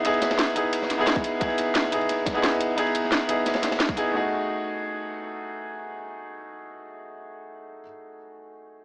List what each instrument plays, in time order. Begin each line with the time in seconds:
Already playing: grand piano B3 D#4 E4 G#4
0.04 grand piano B3 D#4 E4 G#4, closed hi-hat, ride
0.14 ride
0.21 snare, closed hi-hat, ride
0.31 snare, ride
0.39 snare, closed hi-hat, ride
0.54 grand piano B3 D#4 E4 G#4, closed hi-hat, ride
0.73 closed hi-hat, ride
0.82 snare
0.90 snare, closed hi-hat, ride
0.97 grand piano B3 D#4 E4 G#4
1.06 snare, closed hi-hat, ride
1.16 kick, snare
1.24 closed hi-hat, ride
1.40 grand piano B3 D#4 E4 G#4, kick, closed hi-hat, ride
1.50 ride
1.58 snare, closed hi-hat, ride
1.74 snare, closed hi-hat, ride
1.84 snare
1.91 grand piano B3 D#4 E4 G#4, closed hi-hat, ride
2.01 ride
2.09 snare, closed hi-hat, ride
2.26 kick, snare, closed hi-hat, ride
2.33 grand piano B3 D#4 E4 G#4, ride
2.43 snare, closed hi-hat, ride
2.60 closed hi-hat, ride
2.76 grand piano B3 D#4 E4 G#4, closed hi-hat, ride
2.87 ride
2.95 closed hi-hat, ride
3.04 snare
3.12 snare, closed hi-hat, ride
3.27 grand piano B3 D#4 E4 G#4, closed hi-hat, ride
3.46 snare, closed hi-hat, ride
3.54 snare, ride
3.63 snare, closed hi-hat, ride
3.71 snare, ride
3.80 snare, closed hi-hat, ride
3.88 kick, snare
3.96 grand piano B3 D#4 E4 G#4, closed hi-hat
4.12 grand piano A3 D#4 F#4
4.17 grand piano G#4